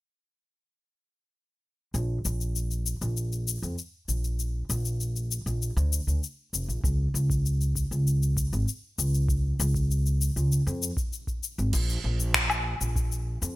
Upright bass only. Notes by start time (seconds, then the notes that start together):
1.94 A#1
2.25 A#1
3.01 A#1
3.62 F2
4.08 A#1
4.69 A#1
5.46 A#1
5.77 D2
6.07 D2
6.53 F1
6.68 A#1
6.84 C#2
7.14 C#2
7.91 C#2
8.53 G#1
8.98 C#2
9.60 C#2
10.36 C#2
10.67 F2
11.58 G#1
11.73 A#1
12.04 A#1
12.81 A#1
13.42 F2